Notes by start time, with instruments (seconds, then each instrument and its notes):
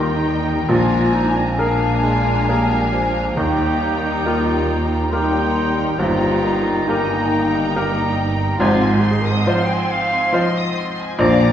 Already playing: grand piano D#2 D#3 A#3 G4 A#4, double bass section D#2, cello section D#3, french horn section G3 A#3, bassoon G3, viola section D#4, clarinet D#4, violin section G5, oboe A#5, flute section C6
0.24 flute section G5
0.68 grand piano A#1 A#2, double bass section A#1, cello section A#2, bassoon F3, french horn section G#3 A#3, viola section D4, clarinet F4, flute section G#5, violin section G#5 A#5
1.14 clarinet D#4
1.36 clarinet C4
1.58 french horn section G#3 A#3, grand piano A#3 G#4 A#4, bassoon A#3, clarinet D4, viola section D4, oboe F5, violin section G#5 A#5
2.03 bassoon G#3
2.49 bassoon G3, grand piano A#3 G#4 A#4
2.93 bassoon F3
3.36 double bass section D#2, grand piano D#2 D#3, cello section D#2, bassoon D#3, french horn section G3 A#3, viola section D#4, clarinet G4, oboe G5, violin section G5 A#5, flute section A#5
3.81 bassoon D#3
4.25 grand piano A#3 G4 A#4, clarinet F4
5.09 french horn section G3 A#3, bassoon G3, grand piano A#3 G4 A#4, viola section D#4, clarinet D#4, violin section G5 A#5, oboe G5, flute section C6
5.98 double bass section G1, grand piano G1 G2, cello section G2, bassoon F3, french horn section G3 A#3, viola section D#4, clarinet F4, violin section G5 A#5, flute section A#5, oboe A#5
6.43 bassoon D#3
6.86 french horn section G3 A#3, grand piano A#3 G4 A#4, viola section D#4, clarinet D#4, violin section G5 A#5, flute section G#5
7.31 flute section G5
7.76 bassoon G3, grand piano A#3 G4 A#4, flute section G5, oboe A#5
8.59 grand piano G#1 G#2, double bass section G#1, cello section G#2, french horn section F3 C4, bassoon F3, viola section C4, clarinet F4, violin section F5 C6, oboe G#5, flute section C6
8.82 violin section G#5
8.99 clarinet G4
9.04 violin section C6
9.11 clarinet G#4
9.21 clarinet A#4
9.26 violin section D#6
9.30 clarinet C5
9.37 clarinet D#5
9.45 grand piano F3 F4 C5, clarinet D5, violin section C6
9.50 clarinet D#5
9.58 clarinet F5
9.65 clarinet G5, violin section G#5
9.73 clarinet G#5
9.82 clarinet G5
9.91 clarinet F5, violin section F5
10.12 violin section G#5
10.32 grand piano F3 F4 C5, clarinet D#5, violin section C6
10.57 violin section D#6
10.78 violin section C6
11.00 violin section G#5
11.18 grand piano A#1 A#2, double bass section A#1, timpani A#2, cello section A#2, bassoon F3, french horn section F3 D4, viola section A#3, clarinet D5, violin section F5 D6, oboe A#5, flute section D6
11.41 violin section A#5